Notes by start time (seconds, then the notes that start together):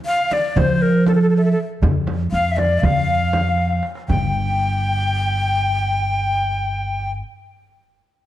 0.06 F5
0.31 D5, darbuka tek, frame drum
0.50 D5
0.56 F3 C5, darbuka dum, frame drum
0.82 A#4
1.07 A4, darbuka tek, frame drum
1.14 A4 A#4
1.21 A4
1.30 A4
1.37 A4 E5
1.44 A4
1.52 A4
1.69 darbuka ka
1.82 F2, darbuka dum, frame drum
2.07 darbuka tek, frame drum
2.31 F2 F5, darbuka ka
2.51 E5
2.56 D5, darbuka tek, frame drum
2.82 F2 F5, darbuka dum, frame drum
3.33 darbuka tek, frame drum
3.58 darbuka tek
3.70 darbuka ka
3.83 darbuka tek
3.95 darbuka ka
4.08 G1 G5, darbuka dum, frame drum